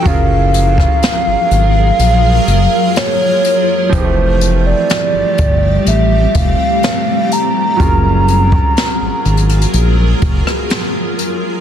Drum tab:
HH |x---x---x---x---x---x---x---x---|x---x---x---x---x---x---x---x---|x---x---x---xxxxx---x---x---x---|
SD |------r-o---------------o-------|--------o---------------o-------|--------o-------------r-o-------|
BD |o-----o-------------------------|o-----------o-------o-----------|o-----o-------------o-----------|